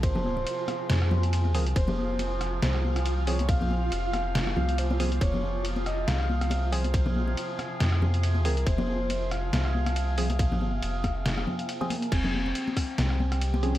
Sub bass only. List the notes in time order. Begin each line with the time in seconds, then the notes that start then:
Already playing: C2
0.89 F2
1.76 F1
2.62 C2
3.52 B1
3.78 A#1
3.92 F1
4.56 C2
5.21 F1
6.08 C2
6.98 B1
7.24 A#1
7.80 F2
8.67 F1
9.53 C2
10.82 F1
12.12 F1
12.98 C2